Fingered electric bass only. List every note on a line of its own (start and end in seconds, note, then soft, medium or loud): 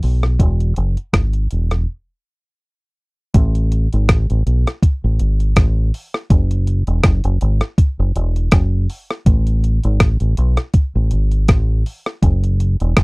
0.04 0.36 B1 medium
0.40 0.73 E1 loud
0.77 0.95 F#1 medium
1.14 1.47 G#1 medium
1.52 1.84 E1 medium
3.35 3.87 A1 loud
3.94 4.08 G#1 medium
4.10 4.28 A1 medium
4.30 4.45 A1 medium
4.46 4.64 B1 medium
5.04 5.19 A1 medium
5.20 5.53 G#1 medium
5.57 5.90 A1 medium
6.31 6.82 F#1 loud
6.88 7.03 E1 medium
7.05 7.23 F#1 medium
7.25 7.40 F#1 medium
7.42 7.60 G#1 loud
7.99 8.14 F#1 medium
8.16 8.49 E1 medium
8.53 8.86 F#1 medium
9.27 9.78 A1 loud
9.85 9.99 G#1 loud
10.01 10.19 A1 medium
10.21 10.36 A1 medium
10.38 10.56 B1 medium
10.95 11.10 A1 medium
11.13 11.46 G#1 medium
11.49 11.82 A1 loud
12.23 12.75 F#1 loud
12.81 12.96 E1 medium
12.98 13.04 F#1 medium